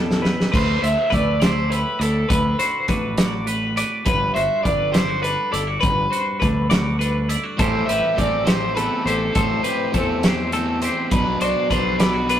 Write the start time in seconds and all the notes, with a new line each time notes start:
Already playing: E2 B2 E3 G3 D4 A4
0.11 snare
0.22 E4 B4, snare
0.40 snare
0.51 D2 D3 B4 C5, kick, crash
0.81 D2 E4 C5 E5, closed hi-hat
1.10 D2 A3 E4 B4 D5, kick, closed hi-hat
1.40 E4 C5 D5, snare, closed hi-hat
1.70 A2 E4 B4, closed hi-hat
1.99 D2 E4 A4 D5, closed hi-hat
2.29 D2 D3 B4, kick, closed hi-hat
2.59 F#4 C5, closed hi-hat
2.88 A1 D4 F#4 B4, kick, closed hi-hat
3.18 F#4 D5, snare, closed hi-hat
3.46 A2 B4, closed hi-hat
3.76 B4 D5, closed hi-hat
4.05 G1 G2 B4, kick, closed hi-hat
4.34 G1 F#4 C5 E5, closed hi-hat
4.63 G1 D3 D4 B4 D5, kick, closed hi-hat
4.92 E4 C5 D5, snare, closed hi-hat
5.08 F#4
5.22 D3 D4 B4, closed hi-hat
5.52 G1 E4 A4 D5, closed hi-hat
5.67 F#4
5.80 G1 G2 B4, kick, closed hi-hat
6.11 F#4 C5, closed hi-hat
6.40 D2 D3 D4 B4, kick, closed hi-hat
6.70 F#4 D5, snare, closed hi-hat
6.99 D3 D4 B4, closed hi-hat
7.29 E4 D5, closed hi-hat
7.43 F#4
7.57 A1 A2 E3 G3 A3 C4 E4 A4 C5, kick, closed hi-hat
7.61 C4 G4
7.86 A1 A3 C4 E4 G4 B4 E5, closed hi-hat
8.15 A1 E3 A3 C4 E4 A4 D5, kick, closed hi-hat
8.45 A3 C4 E4 G4 C5, snare, closed hi-hat
8.74 E2 E3 A3 C4 E4 A4 B4, closed hi-hat
9.04 A1 A3 C4 E4 G4 A4 C5, closed hi-hat
9.33 A1 A2 E3 A3 C4 E4 A4 C5, kick, closed hi-hat
9.63 A3 C4 E4 G4 B4, closed hi-hat
9.92 E2 E3 A3 C4 E4 A4, kick, closed hi-hat
10.23 A3 C4 E4 G4 C5, snare, closed hi-hat
10.52 E2 E3 A3 C4 E4 A4, closed hi-hat
10.82 A3 C4 E4 G4 C5, closed hi-hat
11.11 B1 B2 F#3 B3 D4 B4, kick, closed hi-hat
11.41 B1 F#3 B3 D4 F#4 C5 D5, closed hi-hat
11.70 B1 B2 D3 F#3 B3 D4 B4 C5, kick, closed hi-hat
11.99 F#3 B3 D4 E4 B4 D5, snare, closed hi-hat
12.13 F#4
12.28 F#2 B2 F#3 B3 D4 B4, closed hi-hat